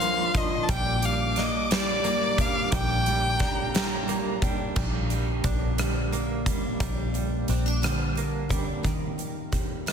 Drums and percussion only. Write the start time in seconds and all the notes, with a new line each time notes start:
0.01 closed hi-hat
0.35 kick, closed hi-hat
0.69 kick, closed hi-hat
1.02 closed hi-hat
1.36 snare, closed hi-hat
1.71 snare, closed hi-hat
2.05 closed hi-hat
2.38 kick, closed hi-hat
2.72 kick, closed hi-hat
3.06 closed hi-hat
3.39 kick, snare, closed hi-hat
3.75 snare, closed hi-hat
4.09 closed hi-hat
4.42 kick, closed hi-hat
4.76 kick, crash
5.10 closed hi-hat
5.44 kick, closed hi-hat
5.78 cross-stick, closed hi-hat
6.13 closed hi-hat
6.46 kick, closed hi-hat
6.80 kick, closed hi-hat
7.15 closed hi-hat
7.48 cross-stick, closed hi-hat
7.83 cross-stick, closed hi-hat
8.17 closed hi-hat
8.50 kick, closed hi-hat
8.84 kick, closed hi-hat
9.19 closed hi-hat
9.52 kick, cross-stick, closed hi-hat
9.87 cross-stick, closed hi-hat